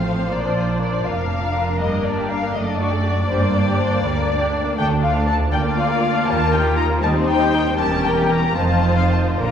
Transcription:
0.00 0.18 A1 soft
0.00 0.18 A2 soft
0.00 1.76 F3 soft
0.00 0.17 A3 soft
0.00 0.30 C4 soft
0.00 1.05 C5 soft
0.00 0.31 F5 medium
0.17 0.30 C4 soft
0.30 0.93 A#1 medium
0.30 0.92 A#2 soft
0.30 0.42 A#3 soft
0.30 3.25 D4 soft
0.30 0.79 D5 medium
0.43 0.55 D4 soft
0.55 0.68 F4 soft
0.68 0.80 D4 soft
0.79 0.92 A#3 soft
0.79 1.05 D5 medium
0.92 1.05 D4 soft
1.04 1.68 F1 soft
1.04 1.67 F2 soft
1.04 1.17 F4 soft
1.04 2.54 A#4 soft
1.04 1.81 F5 medium
1.17 1.30 D4 soft
1.29 1.42 A#3 soft
1.42 1.55 D4 soft
1.55 1.68 F4 soft
1.68 1.81 D4 soft
1.80 2.42 G1 soft
1.80 2.42 G2 medium
1.80 1.92 G3 soft
1.80 2.53 A#3 soft
1.80 2.05 D#5 medium
1.92 2.05 A#3 soft
2.05 2.18 D4 soft
2.05 2.30 D5 soft
2.18 2.30 G4 soft
2.29 2.43 D4 soft
2.29 2.54 F5 medium
2.43 2.55 A#3 soft
2.54 3.17 F#1 soft
2.54 3.17 F#2 soft
2.54 3.29 A3 soft
2.54 2.67 A3 soft
2.54 5.51 D5 medium
2.54 2.79 D#5 medium
2.67 2.80 D4 soft
2.79 2.93 F#4 soft
2.79 3.28 D5 medium
2.93 3.05 A4 soft
3.05 3.17 F#4 soft
3.18 3.30 D4 soft
3.29 3.91 G1 medium
3.29 3.90 G2 medium
3.29 3.42 G3 soft
3.29 4.74 A#3 soft
3.29 5.48 D4 soft
3.29 3.77 C5 medium
3.43 3.54 A#3 soft
3.54 3.67 D4 soft
3.67 3.79 G4 soft
3.78 3.91 D4 soft
3.78 4.02 C5 medium
3.92 4.03 A#3 soft
4.02 4.65 D2 medium
4.02 4.15 G3 medium
4.02 4.77 D5 medium
4.16 4.28 A#3 soft
4.29 4.41 D4 medium
4.40 4.53 G4 soft
4.53 4.65 D4 soft
4.65 4.78 A#3 medium
4.77 5.40 D2 medium
4.77 5.53 A3 soft
4.77 4.89 A3 medium
4.77 4.85 G5 medium
4.91 5.03 D4 soft
5.02 5.15 F4 medium
5.02 5.27 F5 medium
5.15 5.28 D4 medium
5.27 5.40 A3 soft
5.27 5.35 A5 medium
5.39 5.52 D4 medium
5.52 6.14 D2 medium
5.52 6.15 D2 medium
5.52 5.64 A#3 medium
5.52 7.03 A#3 medium
5.52 7.03 F4 medium
5.52 6.25 D5 medium
5.52 5.60 G5 medium
5.64 5.77 D4 medium
5.77 5.90 F4 medium
5.77 6.26 F5 medium
5.89 6.01 A#4 medium
6.02 6.14 F4 soft
6.14 6.27 D4 medium
6.27 6.90 D#2 medium
6.27 6.39 G3 medium
6.27 7.03 A#4 medium
6.27 6.52 A5 medium
6.39 6.52 A#3 medium
6.51 6.64 D#4 medium
6.51 6.78 G5 medium
6.64 6.77 G4 medium
6.77 6.90 D#4 medium
6.77 6.85 A#5 medium
6.90 7.02 A#3 medium
7.01 7.65 D#2 medium
7.01 7.66 D#2 medium
7.01 7.14 G3 medium
7.01 7.77 G3 medium
7.01 7.79 D#4 medium
7.01 7.78 C5 medium
7.01 7.10 A5 medium
7.15 7.28 C4 medium
7.27 7.40 D#4 medium
7.27 7.77 G5 medium
7.40 7.53 G4 medium
7.53 7.66 D#4 medium
7.65 7.78 C4 soft
7.78 8.53 E1 medium
7.78 8.53 E2 medium
7.78 8.53 G3 medium
7.78 8.53 C#4 medium
7.78 8.53 G4 medium
7.78 8.53 A#4 medium
7.78 8.04 A5 medium
8.03 8.30 G5 medium
8.30 8.56 A#5 medium
8.56 9.39 F1 medium
8.56 9.39 F2 medium
8.56 9.39 D#3 medium
8.56 9.39 C4 soft
8.56 9.37 F4 medium
8.56 9.37 C5 medium
8.56 8.97 A5 medium
8.96 9.10 F5 medium
9.11 9.19 A5 medium
9.39 9.51 A#1 medium
9.39 9.51 A#2 medium
9.39 9.51 D3 medium
9.39 9.51 D4 medium
9.39 9.51 F4 medium
9.39 9.51 A#4 medium
9.39 9.51 A#5 medium

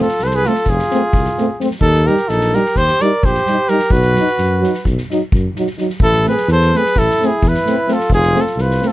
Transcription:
0.00 0.24 F4 medium
0.00 0.25 A4 medium
0.08 snare soft
0.19 0.47 C2 medium
0.19 snare soft
0.23 0.36 A4 medium
0.23 0.29 B4 medium
0.23 0.37 C5 medium
0.31 snare soft
0.35 0.47 G#4 medium
0.35 0.49 B4 medium
0.44 0.55 A3 medium
0.44 0.53 C4 medium
0.44 0.69 F4 medium
0.44 0.71 A4 medium
0.44 snare soft
0.55 snare soft
0.64 0.81 F1 medium
0.64 kick medium
0.64 snare soft
0.69 1.61 F4 medium
0.69 1.62 G#4 medium
0.79 snare soft
0.90 1.02 A3 medium
0.90 1.01 C4 medium
0.90 snare soft
1.13 1.29 C2 medium
1.13 kick medium
1.24 snare soft
1.37 1.48 A3 medium
1.37 1.47 C4 medium
1.37 snare soft
1.60 1.69 A3 medium
1.60 1.69 C4 medium
1.60 snare soft
1.71 snare soft
1.80 2.07 D#2 loud
1.80 2.08 D#4 medium
1.80 2.08 A4 loud
1.80 kick medium
1.94 snare soft
2.06 2.17 G3 medium
2.06 2.15 D#4 medium
2.06 2.30 G4 medium
2.06 2.31 A#4 medium
2.06 snare soft
2.17 snare soft
2.28 2.56 A#1 medium
2.28 2.56 D#4 medium
2.28 2.56 A4 medium
2.28 snare soft
2.41 snare soft
2.52 2.62 G3 medium
2.52 2.62 D#4 medium
2.52 2.77 G4 medium
2.52 2.79 A#4 medium
2.52 snare soft
2.65 snare soft
2.76 2.90 D#2 medium
2.76 3.02 G4 medium
2.76 3.03 C5 loud
2.76 kick medium
2.76 snare soft
2.88 snare soft
3.00 3.10 G3 medium
3.00 3.11 D#4 medium
3.00 3.27 A#4 medium
3.00 3.26 D5 medium
3.00 snare soft
3.23 3.38 A#1 medium
3.23 3.70 G4 loud
3.23 3.70 C5 medium
3.23 kick medium
3.35 snare soft
3.46 3.55 G3 medium
3.46 3.58 D#4 medium
3.46 snare soft
3.68 3.77 G3 soft
3.68 3.79 D#4 medium
3.68 3.94 G4 medium
3.68 3.93 A#4 medium
3.68 snare soft
3.79 snare soft
3.90 4.17 B1 loud
3.90 4.87 F#4 medium
3.90 4.86 B4 medium
3.90 kick medium
4.01 snare soft
4.15 4.24 F#3 soft
4.15 snare soft
4.19 4.27 D#4 medium
4.27 snare soft
4.37 4.65 F#2 medium
4.37 snare soft
4.61 4.71 F#3 medium
4.61 4.74 D#4 soft
4.61 snare soft
4.74 snare soft
4.85 4.99 B1 medium
4.85 kick medium
4.85 snare soft
4.97 snare soft
5.10 5.21 F#3 medium
5.10 5.20 D#4 medium
5.10 snare soft
5.32 5.47 F#2 medium
5.32 kick medium
5.56 5.67 F#3 medium
5.56 5.66 D#4 soft
5.56 snare soft
5.67 snare soft
5.78 5.88 F#3 soft
5.78 5.87 D#4 soft
5.78 snare soft
5.90 snare soft
6.00 6.27 A1 medium
6.00 6.25 E4 medium
6.00 6.25 A4 loud
6.00 kick medium
6.12 snare soft
6.25 6.34 A3 soft
6.25 6.34 C4 medium
6.25 6.48 B4 medium
6.25 snare soft
6.29 6.48 G#4 medium
6.37 snare soft
6.48 6.74 E2 loud
6.48 6.79 A4 medium
6.48 snare soft
6.52 6.78 C5 loud
6.61 snare soft
6.73 6.82 A3 medium
6.73 6.83 C4 soft
6.73 7.00 B4 medium
6.73 snare soft
6.78 6.99 G#4 medium
6.85 snare soft
6.95 7.09 A1 medium
6.95 7.25 E4 medium
6.95 7.28 A4 medium
6.95 kick medium
6.95 snare soft
7.10 snare soft
7.21 7.31 A3 medium
7.21 7.30 C4 medium
7.21 snare soft
7.25 7.48 E4 medium
7.25 7.50 G#4 medium
7.42 7.55 E2 medium
7.42 kick medium
7.48 7.95 E4 medium
7.48 7.94 B4 medium
7.54 snare soft
7.66 7.75 A3 medium
7.66 7.76 C4 medium
7.66 snare soft
7.88 7.96 A3 medium
7.88 7.97 C4 medium
7.88 snare soft
7.93 8.12 F4 medium
7.93 8.12 A4 medium
8.00 snare soft
8.10 8.36 F1 loud
8.10 kick medium
8.14 8.39 F4 medium
8.14 8.42 G#4 loud
8.23 snare soft
8.34 8.43 A3 medium
8.34 8.43 C4 medium
8.34 snare soft
8.39 8.61 F4 medium
8.39 8.62 A4 medium
8.47 snare soft
8.56 8.83 C2 medium
8.56 snare soft
8.61 8.86 F4 medium
8.61 8.89 B4 medium
8.70 snare soft
8.81 8.91 A3 medium
8.81 8.90 C4 medium
8.81 snare soft
8.86 8.92 F4 medium
8.86 8.92 A4 medium

